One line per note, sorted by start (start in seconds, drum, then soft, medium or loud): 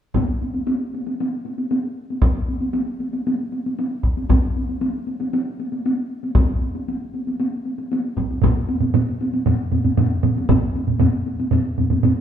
0.15 taiko medium
0.15 taiko high medium
0.42 taiko high soft
0.54 taiko high soft
0.67 taiko high medium
0.94 taiko high soft
1.07 taiko high soft
1.20 taiko high medium
1.45 taiko high soft
1.58 taiko high soft
1.71 taiko high medium
2.10 taiko high soft
2.22 taiko medium
2.22 taiko high soft
2.49 taiko high soft
2.61 taiko high soft
2.74 taiko high medium
3.00 taiko high soft
3.13 taiko high soft
3.27 taiko high medium
3.53 taiko high soft
3.66 taiko high soft
3.79 taiko high medium
4.03 taiko medium
4.17 taiko high soft
4.29 taiko medium
4.29 taiko high medium
4.57 taiko high soft
4.69 taiko high soft
4.81 taiko high medium
5.07 taiko high soft
5.21 taiko high soft
5.33 taiko high medium
5.60 taiko high soft
5.72 taiko high soft
5.86 taiko high medium
6.23 taiko high soft
6.35 taiko medium
6.35 taiko high medium
6.62 taiko high soft
6.75 taiko high soft
6.88 taiko high soft
7.14 taiko high soft
7.27 taiko high soft
7.40 taiko high medium
7.66 taiko high soft
7.78 taiko high soft
7.92 taiko high medium
8.17 taiko medium
8.17 taiko high soft
8.31 taiko high soft
8.42 taiko medium
8.42 taiko low-mid medium
8.42 taiko mid medium
8.42 taiko high medium
8.69 taiko high medium
8.80 taiko low-mid medium
8.80 taiko mid medium
8.80 taiko high soft
8.94 taiko low-mid medium
8.94 taiko mid medium
8.94 taiko high medium
9.21 taiko high medium
9.34 taiko high medium
9.46 taiko low-mid medium
9.46 taiko mid medium
9.46 taiko high medium
9.72 taiko low-mid medium
9.72 taiko mid medium
9.72 taiko high medium
9.84 taiko low-mid medium
9.84 taiko mid medium
9.84 taiko high medium
9.97 taiko low-mid medium
9.97 taiko mid medium
9.97 taiko high medium
10.23 taiko low-mid medium
10.23 taiko mid medium
10.23 taiko high medium
10.37 taiko high soft
10.49 taiko medium
10.49 taiko low-mid medium
10.49 taiko mid medium
10.49 taiko high medium
10.76 taiko high soft
10.87 taiko low-mid medium
10.87 taiko mid medium
10.87 taiko high soft
11.00 taiko low-mid medium
11.00 taiko mid medium
11.00 taiko high medium
11.26 taiko high soft
11.40 taiko high medium
11.51 taiko low-mid medium
11.51 taiko mid medium
11.51 taiko high medium
11.78 taiko low-mid medium
11.78 taiko mid medium
11.78 taiko high soft
11.90 taiko low-mid medium
11.90 taiko mid medium
11.90 taiko high soft
12.03 taiko low-mid medium
12.03 taiko mid medium
12.03 taiko high medium